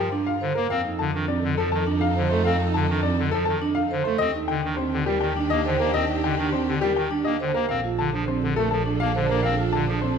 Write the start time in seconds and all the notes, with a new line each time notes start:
Already playing: G2 F4 A#4 G5
0.12 D4
0.26 F5
0.41 D3 C5
0.55 A#3 A#4
0.70 F2 C4 D#4 A4 F5
0.85 D#4
0.99 D3 A5
1.14 D#3 D4
1.28 C4 D5
1.44 D3
1.57 F3 A4
1.72 D#3 A5
1.87 D4
2.01 F5
2.16 D3 C5
2.29 A3 A4 C5
2.44 C4 F5
2.60 D#4
2.74 D3 A5
2.89 D#3 D4
3.03 C4 D5
3.19 D3
3.31 F3 A4
3.45 D#3 A5
3.62 D4
3.75 F5
3.91 D3 C5
4.04 A3 A4 C5
4.18 D#2 C4 D4 G4 D#5
4.34 D#4
4.48 D3 G5
4.63 D#3 D4
4.77 C4 C5
4.93 D3
5.06 G3 G4 A#4
5.21 D#3 G5
5.37 D4
5.50 A#3 D#5
5.65 D3 C5
5.80 A#3 A#4
5.94 C4 D#5
6.09 D#4
6.23 D3 G5
6.38 D#3 D4
6.53 C4 C5
6.67 D3
6.81 G3 G4 A#4
6.96 D#3 G5
7.11 D4
7.24 A#3 D#5
7.40 D3 C5
7.54 A#3 A#4
7.69 A#1 C4 D4 A4 F5
7.84 F4
7.98 D3 A5
8.13 F3 D4
8.28 C4 C5
8.43 D3
8.56 A3 A4 A#4
8.71 F3 A5
8.86 D4
9.00 A#3 F5
9.15 D3 C5
9.29 A#3 A#4
9.43 C4 F5
9.59 F4
9.72 D3 A5
9.88 F3 D4
10.02 C4 C5